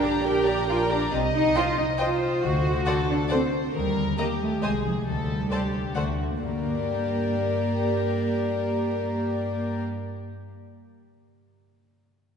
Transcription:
Already playing: A#1 A#2 D4 G4 A#4 D5
0.03 A#3 G4 D5 A#5
0.24 D4 G4 A#4 G5
0.45 G4 D5 A#5
0.68 D4 F4 A#4 D5 G5
0.90 D4 G4 D5 A#5
1.12 C2 C3 C4 D#5
1.34 G3 D#4
1.56 D#4 F4 C5 D#5 G5
1.78 D#4 C5
1.98 F4 C5 D#5 G5
2.21 C5
2.43 D2 D3 F#4
2.66 A3
2.86 D4 A4 C5 D5 F#5
3.10 D4 C5
3.30 C4 A4 C5 D5 F#5
3.53 C5
3.75 D#2 D#3 G3 A#4
3.98 A#3
4.18 A#3 G4 A#4 D#5 A#5
4.41 A3 D#5
4.63 C2 C3 G#3 G#4 C5 D#5 G#5
4.84 F3 D#4 G#4
5.07 D2 D3 G3 A4
5.30 A3
5.51 D4 G4 A4 C5 D5 A5
5.74 C5
5.95 D2 D3 A3 F#4 A4 C5 D5 F#5
6.19 D4 F#4
6.40 G2 A#3 G4 A#4 D5
6.48 G3
6.55 A#3
6.62 D4
6.69 G4
6.76 D5

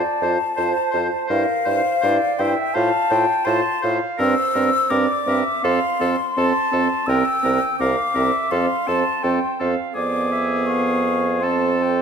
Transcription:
Already playing: D5 A5
0.21 F2 F4 C5
0.56 F2 F4 C5
0.91 F2 F4 C5
1.28 G2 E4 A#4 C5 F5
1.65 G2 E4 C5
2.01 G2 E4 C5 D5
2.38 G2 E4 C5 E5 G5
2.74 A2 F4 C5 F5 A5
3.09 A2 F4 C5 G5
3.44 A2 F4 C5 A5 C6
3.82 A2 F4 C5 F5
4.18 G2 C4 A#4 C5 E6
4.54 G2 C4 A#4
4.89 G2 C4 A#4 D5 D6
5.26 G2 C4 A#4 E5
5.63 F2 C4 A4 F5 C6
5.99 F2 C4 A4
6.36 F2 C4 A4 A5
6.71 F2 C4 A4
7.06 C2 C4 A#4 G5 E6
7.43 C2 C4 A#4
7.79 C2 C4 A#4 F5 D6
8.14 C2 C4 A#4 E5
8.51 F2 C4 A4 F5 C6
8.87 F2 C4 A4 A5
9.23 F2 C4 A4 G5
9.60 F2 C4 A4 F5
9.95 F2 B3 G#4 D5 D6
10.32 E5
10.66 F5 C#6
11.41 C4 A4 A5 C6
11.83 G5

